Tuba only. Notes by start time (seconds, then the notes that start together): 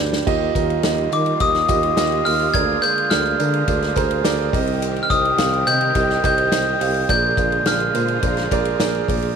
0.00 D2
0.27 D#2
0.55 D#2
0.84 D#2
1.12 D#3
1.41 D#2
1.69 D#2
1.98 D#2
2.26 D#2
2.54 D2
3.12 D2
3.40 D3
3.68 D2
3.97 D2
4.25 D2
4.53 C2
5.10 C2
5.39 C2
5.67 C3
5.95 C2
6.24 C2
6.52 C2
6.81 C2
7.09 A#1
7.38 A#1
7.66 A#1
7.95 A#2
8.23 A#1
8.51 A#1
8.80 A#1
9.09 A#1